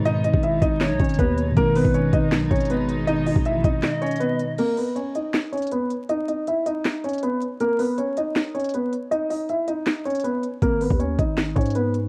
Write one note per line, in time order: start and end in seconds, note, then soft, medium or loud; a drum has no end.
0.00 0.30 G#2 loud
0.00 1.50 B2 medium
0.00 1.53 B2 medium
0.00 1.52 D#3 medium
0.00 1.52 G#3 medium
0.00 1.53 G#3 medium
0.00 1.52 D#4 medium
0.00 1.55 D#4 medium
0.05 0.24 D#4 medium
0.05 0.23 D#5 loud
0.05 closed hi-hat medium
0.24 0.43 D#4 medium
0.24 0.42 D#5 medium
0.24 closed hi-hat medium
0.34 0.61 G#1 loud
0.34 kick loud
0.43 0.62 E4 medium
0.43 0.61 E5 medium
0.43 closed hi-hat medium
0.62 0.92 G#1 loud
0.62 0.98 D#4 medium
0.62 0.97 D#5 medium
0.62 kick loud
0.62 closed hi-hat medium
0.81 1.52 C#5 medium
0.81 snare loud
0.81 clap medium
0.81 closed hi-hat medium
0.90 0.99 B1 loud
1.00 1.18 G#1 loud
1.00 1.18 C#4 medium
1.00 1.18 C#5 medium
1.00 kick loud
1.00 closed hi-hat soft
1.05 closed hi-hat medium
1.09 closed hi-hat medium
1.14 closed hi-hat medium
1.19 1.55 D#2 loud
1.19 1.37 B3 medium
1.19 1.36 B4 medium
1.19 kick medium
1.19 closed hi-hat medium
1.38 closed hi-hat medium
1.52 4.52 B2 medium
1.52 4.53 D#3 medium
1.57 1.84 G#1 loud
1.57 4.55 B2 medium
1.57 4.55 D#3 medium
1.57 4.55 G#3 medium
1.57 1.75 A#3 medium
1.57 4.55 D#4 medium
1.57 1.74 A#4 loud
1.57 kick loud
1.57 closed hi-hat medium
1.61 4.56 D#4 medium
1.75 1.93 B3 medium
1.75 1.93 B4 medium
1.75 2.29 B4 medium
1.75 open hi-hat medium
1.85 2.12 G#1 loud
1.85 kick loud
1.94 2.12 C#4 medium
1.94 2.12 C#5 medium
1.94 closed hi-hat medium
2.13 2.33 G#1 loud
2.13 2.49 D#4 medium
2.13 2.49 D#5 medium
2.13 kick loud
2.13 closed hi-hat medium
2.32 2.50 B1 loud
2.32 snare loud
2.32 clap medium
2.32 closed hi-hat medium
2.51 3.32 G#1 loud
2.51 2.69 C#4 medium
2.51 2.68 C#5 medium
2.51 kick loud
2.51 closed hi-hat medium
2.56 closed hi-hat medium
2.60 closed hi-hat medium
2.65 closed hi-hat medium
2.70 2.88 B3 medium
2.70 2.88 B4 medium
2.70 closed hi-hat medium
2.89 closed hi-hat medium
3.07 3.25 D#4 medium
3.07 3.25 D#5 loud
3.07 closed hi-hat medium
3.26 3.44 D#4 medium
3.26 3.44 D#5 medium
3.26 open hi-hat medium
3.36 3.56 G#1 loud
3.36 kick loud
3.45 3.64 E4 medium
3.45 3.63 E5 medium
3.45 closed hi-hat medium
3.55 3.63 A#1 loud
3.64 3.82 G#1 loud
3.64 4.00 D#4 medium
3.64 4.00 D#5 medium
3.64 kick loud
3.64 closed hi-hat medium
3.83 4.54 D#5 medium
3.83 snare loud
3.83 clap medium
3.83 closed hi-hat medium
4.02 4.20 C#4 medium
4.02 4.19 C#5 medium
4.02 closed hi-hat medium
4.06 closed hi-hat medium
4.11 closed hi-hat medium
4.16 closed hi-hat medium
4.20 4.39 B3 medium
4.20 4.38 B4 medium
4.20 closed hi-hat medium
4.40 closed hi-hat medium
4.58 4.77 A#3 medium
4.58 4.76 A#4 loud
4.58 closed hi-hat medium
4.58 crash medium
4.77 4.95 B3 medium
4.77 4.95 B4 medium
4.77 open hi-hat medium
4.96 5.14 C#4 medium
4.96 5.14 C#5 medium
4.96 closed hi-hat medium
5.15 5.51 D#4 medium
5.15 5.51 D#5 medium
5.15 closed hi-hat medium
5.34 snare loud
5.34 clap medium
5.34 closed hi-hat medium
5.52 5.71 C#4 medium
5.52 5.70 C#5 medium
5.52 closed hi-hat soft
5.57 closed hi-hat medium
5.62 closed hi-hat medium
5.67 closed hi-hat medium
5.71 5.90 B3 medium
5.71 5.89 B4 medium
5.71 closed hi-hat medium
5.90 closed hi-hat medium
6.09 6.27 D#4 medium
6.09 6.27 D#5 loud
6.09 closed hi-hat medium
6.28 6.46 D#4 medium
6.28 6.46 D#5 medium
6.28 closed hi-hat medium
6.47 6.65 E4 medium
6.47 6.65 E5 medium
6.47 closed hi-hat medium
6.66 7.02 D#4 medium
6.66 7.01 D#5 medium
6.66 closed hi-hat medium
6.85 snare loud
6.85 clap medium
6.85 closed hi-hat medium
7.04 7.22 C#4 medium
7.04 7.21 C#5 medium
7.04 closed hi-hat soft
7.08 closed hi-hat medium
7.13 closed hi-hat medium
7.18 closed hi-hat medium
7.23 7.41 B3 medium
7.23 7.40 B4 medium
7.23 closed hi-hat medium
7.41 closed hi-hat medium
7.60 7.79 A#3 medium
7.60 7.78 A#4 loud
7.60 closed hi-hat medium
7.79 7.97 B3 medium
7.79 7.97 B4 medium
7.79 open hi-hat medium
7.98 8.16 C#4 medium
7.98 8.16 C#5 medium
7.98 closed hi-hat medium
8.17 8.53 D#4 medium
8.17 8.53 D#5 medium
8.17 closed hi-hat medium
8.36 snare loud
8.36 clap medium
8.36 closed hi-hat medium
8.54 8.73 C#4 medium
8.54 8.72 C#5 medium
8.54 closed hi-hat soft
8.59 closed hi-hat medium
8.64 closed hi-hat medium
8.69 closed hi-hat medium
8.74 8.92 B3 medium
8.74 8.91 B4 medium
8.74 closed hi-hat medium
8.92 closed hi-hat medium
9.11 9.29 D#4 medium
9.11 9.28 D#5 loud
9.11 closed hi-hat medium
9.30 9.48 D#4 medium
9.30 9.48 D#5 medium
9.30 open hi-hat medium
9.49 9.67 E4 medium
9.49 9.67 E5 medium
9.49 closed hi-hat medium
9.68 10.04 D#4 medium
9.68 10.03 D#5 medium
9.68 closed hi-hat medium
9.87 snare loud
9.87 clap medium
9.87 closed hi-hat medium
10.06 10.24 C#4 medium
10.06 10.23 C#5 medium
10.06 closed hi-hat soft
10.10 closed hi-hat medium
10.15 closed hi-hat medium
10.20 closed hi-hat medium
10.24 10.42 B3 medium
10.24 10.42 B4 medium
10.24 closed hi-hat medium
10.43 closed hi-hat medium
10.62 10.89 G#1 loud
10.62 10.80 A#3 medium
10.62 10.80 A#4 loud
10.62 kick loud
10.62 closed hi-hat medium
10.81 10.99 B3 medium
10.81 10.99 B4 medium
10.81 open hi-hat medium
10.90 11.18 D#2 loud
10.90 kick loud
10.99 11.18 C#4 medium
10.99 11.17 C#5 medium
10.99 closed hi-hat medium
11.19 11.55 G#1 loud
11.19 11.55 D#4 medium
11.19 11.54 D#5 medium
11.19 kick loud
11.19 closed hi-hat medium
11.38 snare loud
11.38 clap medium
11.38 closed hi-hat medium
11.56 12.09 G#2 loud
11.56 11.74 C#4 medium
11.56 11.74 C#5 medium
11.56 kick medium
11.56 closed hi-hat soft
11.61 closed hi-hat medium
11.66 closed hi-hat medium
11.71 closed hi-hat medium
11.75 11.94 B3 medium
11.75 11.93 B4 medium
11.75 closed hi-hat medium
11.94 closed hi-hat medium